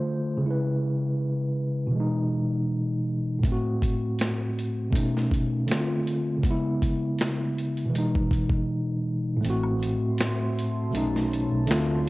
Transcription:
0.00 0.41 D3 medium
0.00 0.43 A3 medium
0.00 0.44 F4 medium
0.00 0.45 C5 medium
0.37 1.87 C#3 medium
0.42 1.89 G#3 medium
0.46 1.92 E4 medium
0.51 1.94 B4 medium
1.87 3.37 B2 medium
1.91 3.39 E3 medium
1.96 3.42 G#3 medium
2.00 3.44 D#4 medium
3.39 4.88 A2 medium
3.39 4.90 A3 medium
3.44 kick loud
3.44 closed hi-hat medium
3.48 4.93 C4 medium
3.52 4.95 F#4 medium
3.82 kick medium
3.82 closed hi-hat medium
4.19 snare medium
4.19 closed hi-hat medium
4.59 closed hi-hat medium
4.90 5.67 B2 medium
4.90 5.67 A3 medium
4.90 kick loud
4.94 5.69 C#4 medium
4.94 5.70 D#4 medium
4.94 closed hi-hat loud
5.17 snare soft
5.31 kick medium
5.31 closed hi-hat medium
5.67 6.43 D3 medium
5.67 6.43 A3 medium
5.67 closed hi-hat medium
5.71 6.45 C4 medium
5.71 6.46 F4 medium
5.71 snare loud
6.07 closed hi-hat medium
6.37 7.87 C#3 medium
6.42 7.89 G#3 medium
6.42 kick loud
6.42 closed hi-hat medium
6.46 7.92 B3 medium
6.51 7.94 E4 medium
6.82 kick medium
6.82 closed hi-hat medium
7.19 snare medium
7.19 closed hi-hat medium
7.58 closed hi-hat medium
7.77 closed hi-hat soft
7.85 9.36 B2 medium
7.90 9.38 E3 medium
7.94 9.41 G#3 medium
7.94 closed hi-hat medium
7.98 9.43 D#4 medium
8.15 kick medium
8.31 kick medium
8.31 closed hi-hat medium
8.49 kick medium
9.36 10.87 A2 medium
9.41 9.95 A1 loud
9.41 10.89 A3 medium
9.41 10.92 F#4 medium
9.41 10.92 E5 medium
9.41 12.09 A5 medium
9.41 10.92 C6 medium
9.41 closed hi-hat medium
9.41 shaker medium
9.45 10.91 C4 medium
9.50 10.94 F#4 medium
9.63 high woodblock medium
9.79 closed hi-hat medium
9.79 shaker soft
10.18 snare loud
10.18 closed hi-hat medium
10.18 shaker medium
10.55 closed hi-hat medium
10.55 shaker medium
10.90 11.45 B1 medium
10.90 11.67 B2 medium
10.90 11.67 A3 medium
10.90 shaker medium
10.95 11.69 C#4 medium
10.95 11.70 D#4 medium
10.95 closed hi-hat loud
11.16 snare soft
11.30 closed hi-hat medium
11.30 shaker soft
11.52 11.67 B1 medium
11.66 12.09 D2 medium
11.66 12.09 D3 medium
11.66 12.09 A3 medium
11.66 closed hi-hat medium
11.66 shaker medium
11.71 12.09 C4 medium
11.71 12.09 F4 medium
11.71 snare loud
12.06 shaker soft

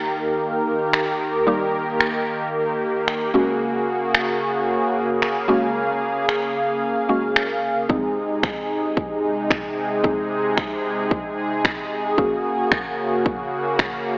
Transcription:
0.00 3.30 D#3 medium
0.00 1.42 G3 medium
0.00 1.43 A#3 medium
0.00 7.86 A#3 medium
0.00 1.43 D#4 medium
0.00 1.43 G4 medium
0.00 3.30 G4 medium
0.00 3.30 A#4 medium
0.93 finger snap loud
1.46 3.30 G3 medium
1.46 3.30 A#3 medium
1.46 3.31 D#4 medium
1.46 3.31 G4 medium
2.00 finger snap loud
3.08 finger snap medium
3.34 7.86 C#3 medium
3.34 5.44 G#3 medium
3.34 5.45 A#3 medium
3.34 5.45 C#4 medium
3.34 5.47 F#4 medium
3.34 5.45 F#4 medium
3.34 7.86 G#4 medium
4.15 finger snap loud
5.22 finger snap loud
5.48 7.06 G#3 medium
5.48 7.06 A#3 medium
5.48 7.06 C#4 medium
5.48 7.06 F#4 medium
5.48 7.87 F5 medium
6.29 finger snap loud
7.09 7.88 G#3 medium
7.09 7.90 A#3 medium
7.09 7.90 C#4 medium
7.09 7.90 F#4 medium
7.36 finger snap medium
7.89 12.14 C3 medium
7.89 10.00 G#3 medium
7.89 12.14 G#3 medium
7.89 10.00 C4 medium
7.89 12.14 D#4 medium
7.89 10.00 D#4 medium
7.89 14.18 G#4 medium
7.89 10.00 G#4 medium
7.89 kick loud
8.43 finger snap loud
8.43 kick loud
8.97 kick loud
9.50 finger snap loud
9.50 kick loud
10.03 12.14 G#3 medium
10.03 12.14 C4 medium
10.03 12.14 D#4 medium
10.03 12.14 G#4 medium
10.03 kick loud
10.57 finger snap loud
10.57 kick loud
11.11 kick loud
11.65 finger snap medium
11.65 kick loud
12.18 14.18 A#3 medium
12.18 14.18 C#4 medium
12.18 14.18 F#4 medium
12.18 14.18 G#4 medium
12.18 kick loud
12.72 finger snap loud
12.72 kick loud
13.25 kick loud
13.79 finger snap loud
13.79 kick loud

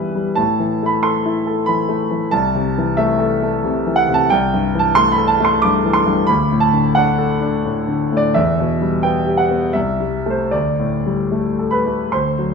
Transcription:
0.00 0.33 G2 soft
0.00 0.41 E3 soft
0.00 0.15 G3 soft
0.00 0.40 B3 soft
0.00 0.41 E4 soft
0.00 0.37 B4 medium
0.00 0.40 E5 medium
0.15 0.38 G3 soft
0.35 2.28 A2 soft
0.35 0.86 A5 medium
0.60 0.95 E3 soft
0.83 1.16 A3 soft
0.83 1.03 B5 medium
1.03 1.37 A4 soft
1.03 1.67 C6 medium
1.25 1.59 E4 soft
1.47 1.81 A4 soft
1.66 2.03 E3 soft
1.66 2.32 B5 medium
1.89 2.24 A3 soft
2.11 2.33 E3 soft
2.31 4.26 C2 medium
2.31 2.97 A5 medium
2.55 2.89 C3 soft
2.78 3.11 E3 soft
2.97 3.32 A3 soft
2.97 3.96 E5 medium
3.19 3.54 A4 soft
3.42 3.77 A3 soft
3.64 3.99 C3 soft
3.86 4.22 E3 soft
3.96 4.13 F#5 medium
4.09 4.31 C3 soft
4.14 4.30 A5 medium
4.30 6.25 C2 medium
4.30 4.79 G5 medium
4.54 4.88 G2 soft
4.75 5.09 E3 soft
4.79 4.95 A5 medium
4.95 5.31 A3 soft
4.95 5.12 C6 medium
5.12 5.28 B5 medium
5.17 5.53 A4 soft
5.28 5.44 A5 medium
5.40 5.75 A3 soft
5.45 5.61 C6 medium
5.62 5.98 G2 soft
5.62 5.95 D6 medium
5.85 6.20 E3 soft
5.93 6.28 C6 medium
6.05 6.28 G2 soft
6.27 8.32 D2 medium
6.27 6.62 B5 medium
6.52 6.88 A2 soft
6.60 6.96 A5 medium
6.73 7.10 D3 soft
6.95 7.34 D4 soft
6.95 8.17 F#5 medium
7.18 7.56 A4 soft
7.41 7.79 D4 soft
7.65 8.03 A2 soft
7.88 8.26 D3 soft
8.12 8.35 A2 soft
8.17 8.35 D5 medium
8.34 9.71 E2 medium
8.34 9.03 E5 medium
8.60 8.95 B2 soft
8.82 9.18 G3 soft
9.03 9.42 B3 soft
9.03 9.39 G5 medium
9.27 9.65 G4 soft
9.37 9.75 F#5 medium
9.51 9.75 B3 soft
9.73 10.50 C2 soft
9.73 10.31 E5 medium
10.00 10.41 G3 soft
10.26 10.50 A3 soft
10.26 10.50 A4 soft
10.30 10.51 C5 medium
10.51 12.09 D2 soft
10.51 12.52 D5 medium
10.79 11.22 A2 soft
11.06 11.49 G3 soft
11.32 11.76 A3 soft
11.59 12.02 A4 soft
11.71 12.10 B4 soft
11.71 12.12 B5 medium
11.86 12.13 A3 soft
12.12 12.54 D2 soft
12.12 12.54 C5 soft
12.12 12.54 C6 medium
12.39 12.54 F#3 soft

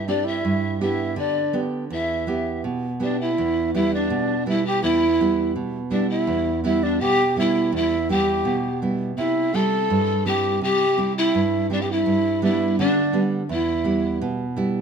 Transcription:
0.00 0.43 G2 medium
0.07 0.37 C4 medium
0.07 0.26 D4 medium
0.07 0.37 E4 soft
0.07 0.38 G4 medium
0.07 0.29 D5 medium
0.25 0.80 E4 medium
0.25 0.82 E5 medium
0.45 1.16 G2 medium
0.81 1.40 B3 medium
0.81 1.40 D4 soft
0.81 1.16 E4 medium
0.81 1.40 G4 medium
0.81 1.16 E5 medium
1.16 1.88 D3 medium
1.16 1.61 D4 medium
1.16 1.61 D5 medium
1.53 1.83 B3 medium
1.53 1.83 D4 medium
1.53 1.83 G4 medium
1.90 2.62 E2 medium
1.90 2.61 E4 medium
1.90 2.61 E5 medium
2.27 2.86 B3 medium
2.27 2.86 E4 soft
2.27 2.86 G4 medium
2.64 3.35 B2 medium
3.00 3.29 B3 soft
3.00 3.19 D4 medium
3.00 3.30 E4 soft
3.00 3.30 G4 medium
3.00 3.19 D5 medium
3.21 3.71 E4 medium
3.21 3.71 E5 medium
3.38 4.08 E2 medium
3.74 4.32 G3 soft
3.74 4.32 B3 medium
3.74 4.33 E4 medium
3.74 3.92 E4 medium
3.74 3.91 E5 medium
3.94 4.44 D4 medium
3.94 4.44 D5 medium
4.10 4.81 B2 medium
4.46 5.04 G3 medium
4.46 5.05 B3 soft
4.46 5.05 E4 medium
4.46 4.65 E4 medium
4.46 4.65 E5 medium
4.66 4.82 G4 loud
4.66 4.83 G5 medium
4.83 5.53 E2 medium
4.83 5.52 E4 loud
4.83 5.52 E5 medium
5.20 5.78 G3 soft
5.20 5.78 B3 soft
5.20 5.78 E4 medium
5.56 6.26 B2 medium
5.90 6.49 G3 soft
5.90 6.49 B3 soft
5.90 6.09 D4 medium
5.90 6.50 E4 medium
5.90 6.09 D5 medium
6.10 6.60 E4 medium
6.10 6.61 E5 medium
6.27 6.98 E2 medium
6.64 7.22 G3 medium
6.64 7.22 B3 soft
6.64 7.23 E4 medium
6.64 6.86 E4 medium
6.64 6.85 E5 medium
6.83 7.02 D4 medium
6.83 7.03 D5 medium
7.00 7.71 B2 medium
7.00 7.37 G4 loud
7.00 7.37 G5 loud
7.36 7.94 G3 medium
7.36 7.95 B3 soft
7.36 7.95 E4 medium
7.36 7.72 E4 medium
7.36 7.71 E5 medium
7.72 8.43 E2 medium
7.72 8.09 E4 medium
7.72 8.08 E5 medium
8.09 8.67 G3 medium
8.09 8.67 B3 soft
8.09 8.68 E4 medium
8.09 8.79 G4 medium
8.09 8.79 G5 medium
8.45 9.15 B2 medium
8.82 9.11 G3 soft
8.82 9.11 B3 soft
8.82 9.11 E4 medium
9.18 9.88 C3 medium
9.18 9.55 E4 medium
9.18 9.57 E5 medium
9.54 10.11 G3 medium
9.54 10.12 C4 medium
9.54 10.12 E4 medium
9.54 10.26 A4 loud
9.54 10.27 A5 loud
9.90 10.60 G2 medium
10.26 10.83 G3 medium
10.26 10.84 C4 soft
10.26 10.84 E4 medium
10.26 10.60 G4 medium
10.26 10.61 G5 medium
10.62 11.31 C3 medium
10.62 11.13 G4 loud
10.62 11.13 G5 medium
10.97 11.55 G3 soft
10.97 11.55 C4 medium
10.97 11.56 E4 medium
11.18 11.67 E4 medium
11.18 11.67 E5 medium
11.35 12.04 G2 medium
11.70 11.98 G3 medium
11.70 11.99 C4 soft
11.70 11.82 D4 medium
11.70 11.99 E4 medium
11.70 11.83 D5 medium
11.81 11.93 G4 medium
11.81 11.94 G5 medium
11.91 12.43 E4 medium
11.91 12.43 E5 medium
12.06 12.75 G2 medium
12.42 12.99 G3 medium
12.42 12.99 B3 soft
12.42 12.99 D4 medium
12.42 12.76 E4 medium
12.42 12.76 E5 medium
12.79 13.47 D3 medium
12.79 13.21 D4 medium
12.79 13.21 D5 medium
13.13 13.42 G3 medium
13.13 13.42 B3 soft
13.13 13.42 D4 medium
13.49 14.18 E2 medium
13.49 14.18 E4 medium
13.49 14.16 E5 medium
13.84 14.42 G3 soft
13.84 14.42 B3 soft
13.84 14.42 E4 medium
14.21 14.81 B2 medium
14.56 14.81 G3 medium
14.56 14.81 B3 soft
14.56 14.81 E4 medium

